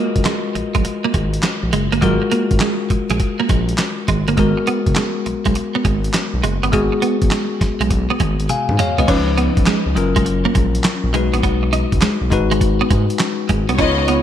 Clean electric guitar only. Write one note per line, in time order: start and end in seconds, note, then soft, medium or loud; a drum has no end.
0.26 0.39 G#3 medium
0.55 muted clean electric guitar stroke soft
0.75 0.82 G#3 medium
0.85 muted clean electric guitar stroke soft
1.04 1.11 A#3 medium
1.14 1.28 G#3 medium
1.44 muted clean electric guitar stroke soft
1.73 1.86 G#3 medium
1.92 1.99 A#3 medium
2.02 2.16 F#3 medium
2.22 muted clean electric guitar stroke soft
2.32 2.45 A#3 medium
2.61 2.75 G#3 medium
2.91 muted clean electric guitar stroke soft
3.11 3.17 G#3 medium
3.20 muted clean electric guitar stroke soft
3.40 3.46 A#3 medium
3.50 3.63 G#3 medium
3.79 muted clean electric guitar stroke soft
4.08 4.22 G#3 medium
4.28 4.35 A#3 medium
4.38 4.51 G#3 medium
4.57 muted clean electric guitar stroke soft
4.67 4.81 B3 medium
4.97 5.10 G#3 medium
5.26 muted clean electric guitar stroke soft
5.46 5.52 G#3 medium
5.56 muted clean electric guitar stroke soft
5.75 5.82 B3 medium
5.85 5.98 G#3 medium
6.14 muted clean electric guitar stroke soft
6.43 6.57 G#3 medium
6.63 6.70 B3 medium
6.73 6.87 G#3 medium
6.92 muted clean electric guitar stroke soft
7.02 7.16 B3 medium
7.32 7.45 G#3 medium
7.62 muted clean electric guitar stroke soft
7.81 7.88 G#3 medium
7.91 muted clean electric guitar stroke soft
8.10 8.17 B3 medium
8.20 8.34 G#3 medium
8.49 muted clean electric guitar stroke soft
8.79 8.92 G#3 medium
8.98 9.05 B3 medium
9.08 9.22 C#4 medium
9.28 muted clean electric guitar stroke soft
9.38 9.51 B3 medium
9.67 9.80 G#3 medium
9.96 muted clean electric guitar stroke soft
10.16 10.23 G#3 medium
10.26 muted clean electric guitar stroke soft
10.45 10.52 A#3 medium
10.55 10.68 G#3 medium
10.85 muted clean electric guitar stroke soft
11.14 11.27 G#3 medium
11.34 11.40 B3 medium
11.43 11.57 B3 medium
11.63 muted clean electric guitar stroke soft
11.73 11.86 D#4 medium
12.02 12.16 G#3 medium
12.32 muted clean electric guitar stroke soft
12.51 12.58 G#3 medium
12.61 muted clean electric guitar stroke soft
12.81 12.88 B3 medium
12.91 13.04 G#3 medium
13.20 muted clean electric guitar stroke soft
13.49 13.63 G#3 medium
13.69 13.76 B3 medium
13.78 13.92 C#4 medium
13.98 muted clean electric guitar stroke soft
14.08 14.22 B3 medium